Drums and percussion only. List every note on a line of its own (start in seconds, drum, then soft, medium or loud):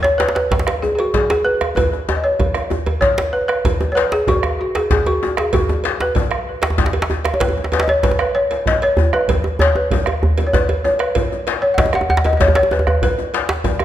0.04 djembe slap medium
0.04 djembe tone medium
0.20 djembe slap medium
0.28 djembe slap medium
0.36 djembe slap medium
0.51 bombo low loud
0.51 cowbell medium
0.51 djembe slap loud
0.59 djembe slap medium
0.67 bombo rim medium
0.67 cowbell soft
0.67 djembe slap medium
0.67 djembe tone medium
0.83 djembe slap soft
0.83 djembe bass medium
0.99 cowbell medium
0.99 djembe slap soft
1.14 bombo low loud
1.14 djembe slap medium
1.30 cowbell soft
1.30 djembe slap medium
1.30 djembe tone medium
1.61 bombo rim medium
1.61 cowbell medium
1.61 djembe tone medium
1.77 bombo rim soft
1.77 bombo low loud
1.77 cowbell medium
1.77 djembe tone medium
1.77 djembe bass medium
1.93 djembe slap soft
1.93 djembe tone medium
2.09 djembe slap medium
2.09 djembe tone loud
2.24 djembe slap soft
2.39 bombo rim soft
2.39 bombo low loud
2.39 cowbell medium
2.39 djembe slap soft
2.39 djembe tone medium
2.54 bombo rim medium
2.54 cowbell soft
2.54 djembe tone medium
2.70 djembe tone medium
2.70 djembe bass medium
2.86 cowbell medium
2.86 djembe slap soft
2.86 djembe tone medium
3.02 bombo rim soft
3.02 bombo low loud
3.02 djembe slap medium
3.18 bombo rim soft
3.18 cowbell soft
3.18 djembe slap medium
3.18 djembe tone medium
3.34 bombo rim soft
3.34 djembe slap soft
3.49 bombo rim medium
3.49 cowbell soft
3.65 bombo low loud
3.65 cowbell medium
3.65 djembe tone loud
3.65 djembe bass medium
3.81 djembe slap soft
3.81 djembe tone medium
3.97 cowbell medium
3.97 djembe slap medium
4.12 djembe slap medium
4.27 bombo low loud
4.27 cowbell medium
4.27 djembe tone medium
4.27 djembe tone loud
4.43 bombo rim medium
4.43 cowbell medium
4.43 djembe tone medium
4.75 bombo rim soft
4.75 cowbell medium
4.75 djembe slap medium
4.75 djembe tone medium
4.90 bombo low loud
4.90 djembe slap medium
4.90 djembe tone loud
4.90 djembe bass medium
5.06 cowbell medium
5.06 djembe slap soft
5.06 djembe tone medium
5.23 djembe tone medium
5.37 bombo rim medium
5.37 cowbell medium
5.37 djembe slap medium
5.53 bombo low loud
5.53 cowbell medium
5.53 djembe tone loud
5.53 djembe bass medium
5.69 djembe slap soft
5.69 djembe tone medium
5.84 cowbell medium
5.84 djembe slap medium
6.00 djembe slap medium
6.15 bombo low loud
6.15 cowbell medium
6.15 djembe tone medium
6.15 djembe bass medium
6.31 bombo rim medium
6.31 cowbell medium
6.62 bombo rim soft
6.62 cowbell medium
6.62 djembe slap loud
6.62 djembe tone medium
6.70 djembe tone medium
6.78 bombo low loud
6.78 djembe slap medium
6.78 djembe bass medium
6.86 djembe slap medium
6.93 cowbell medium
6.93 djembe slap soft
6.93 djembe tone medium
7.02 djembe slap loud
7.10 djembe tone medium
7.25 bombo rim medium
7.25 cowbell medium
7.25 djembe slap medium
7.34 djembe tone medium
7.40 bombo low loud
7.40 cowbell medium
7.40 djembe slap loud
7.40 djembe bass medium
7.49 djembe tone medium
7.58 djembe slap soft
7.58 djembe tone medium
7.64 djembe slap medium
7.72 cowbell medium
7.72 djembe slap medium
7.72 djembe tone medium
7.80 djembe slap loud
7.88 djembe tone medium
8.03 bombo low loud
8.03 cowbell medium
8.03 djembe slap medium
8.03 djembe tone medium
8.03 djembe bass medium
8.11 djembe tone medium
8.19 bombo rim medium
8.19 cowbell medium
8.51 bombo rim soft
8.51 cowbell medium
8.51 djembe tone medium
8.66 bombo low loud
8.66 djembe slap medium
8.66 djembe bass medium
8.82 cowbell medium
8.82 djembe slap soft
8.97 djembe tone medium
8.97 djembe bass loud
9.13 bombo rim medium
9.13 djembe tone medium
9.28 bombo low loud
9.28 cowbell medium
9.28 djembe slap soft
9.28 djembe tone medium
9.28 djembe bass medium
9.44 djembe slap soft
9.44 djembe tone medium
9.59 djembe slap medium
9.59 djembe bass loud
9.75 djembe tone medium
9.91 bombo low loud
9.91 cowbell medium
9.91 djembe tone medium
9.91 djembe bass medium
10.06 bombo rim medium
10.06 cowbell medium
10.06 djembe tone medium
10.22 bombo rim soft
10.22 djembe bass loud
10.38 cowbell medium
10.38 djembe slap soft
10.38 djembe tone medium
10.53 bombo rim soft
10.53 bombo low loud
10.53 djembe slap medium
10.53 djembe tone medium
10.53 djembe bass medium
10.69 cowbell medium
10.69 djembe tone medium
10.85 djembe tone medium
10.99 bombo rim medium
10.99 cowbell medium
11.15 bombo low loud
11.15 cowbell medium
11.15 djembe bass medium
11.32 djembe slap soft
11.32 djembe tone medium
11.47 cowbell medium
11.47 djembe slap medium
11.78 bombo low loud
11.78 cowbell medium
11.78 djembe slap loud
11.78 djembe tone medium
11.78 djembe bass medium
11.86 djembe tone medium
11.93 bombo rim medium
11.93 cowbell medium
11.93 djembe tone medium
12.01 djembe tone medium
12.10 djembe bass medium
12.17 djembe slap loud
12.24 bombo rim soft
12.24 cowbell medium
12.24 djembe tone medium
12.33 djembe tone medium
12.40 bombo low loud
12.40 djembe slap medium
12.40 djembe tone medium
12.40 djembe bass medium
12.48 djembe bass medium
12.55 cowbell soft
12.55 djembe slap loud
12.57 djembe slap soft
12.63 djembe tone medium
12.71 djembe tone medium
12.79 djembe tone medium
12.87 bombo rim medium
12.87 djembe bass medium
13.02 bombo low loud
13.02 cowbell medium
13.02 djembe bass medium
13.19 djembe slap soft
13.19 djembe tone medium
13.34 cowbell soft
13.34 djembe slap medium
13.49 djembe slap loud
13.64 bombo low loud
13.64 cowbell medium
13.64 djembe tone medium
13.64 djembe bass medium
13.79 bombo rim medium
13.79 cowbell soft
13.79 djembe tone medium